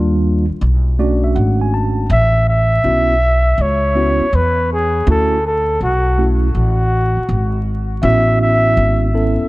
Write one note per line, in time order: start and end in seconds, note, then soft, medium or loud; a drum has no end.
0.00 0.46 D#2 medium
0.00 0.44 G3 medium
0.00 0.45 A#3 medium
0.00 0.45 D4 medium
0.00 0.45 F4 medium
0.49 muted upright bass stroke soft
0.61 1.32 B1 medium
0.99 2.05 A3 medium
0.99 2.05 C#4 medium
0.99 2.06 D4 medium
0.99 2.06 F#4 medium
0.99 1.22 D5 medium
1.24 1.36 E5 medium
1.35 2.06 G#1 medium
1.35 1.59 F#5 medium
1.61 1.73 G#5 medium
1.74 2.08 A5 medium
2.10 2.80 A1 loud
2.10 2.46 E5 loud
2.49 3.63 E5 loud
2.84 3.55 B1 medium
2.84 3.14 B3 medium
2.84 3.14 C#4 medium
2.84 3.14 E4 medium
2.84 3.14 F#4 medium
3.58 4.17 C#2 medium
3.58 4.37 C#5 loud
3.95 4.25 B3 medium
3.95 4.25 C#4 medium
3.95 4.25 E4 medium
3.95 4.26 F#4 medium
4.20 muted upright bass stroke soft
4.33 5.03 E2 medium
4.33 4.71 B4 loud
4.73 5.06 G#4 medium
5.07 5.77 D2 loud
5.07 5.36 A3 medium
5.07 5.36 C#4 medium
5.07 5.37 E4 medium
5.07 5.37 F#4 medium
5.07 5.43 A4 medium
5.46 5.80 A4 medium
5.81 6.51 B1 medium
5.81 6.29 F#4 medium
6.18 6.47 A3 medium
6.18 6.48 C#4 medium
6.18 6.48 E4 medium
6.18 6.48 F#4 medium
6.55 7.13 A1 medium
6.55 7.63 F#4 medium
7.17 muted upright bass stroke soft
7.29 7.99 G#1 medium
8.03 8.73 A1 loud
8.03 9.09 B3 medium
8.03 9.09 C#4 medium
8.03 9.09 E4 medium
8.03 9.10 F#4 medium
8.03 8.38 E5 loud
8.41 9.11 E5 loud
8.77 9.35 G#1 medium
9.14 9.48 B3 medium
9.14 9.48 C#4 medium
9.14 9.48 E4 medium
9.14 9.48 A4 medium
9.39 muted upright bass stroke soft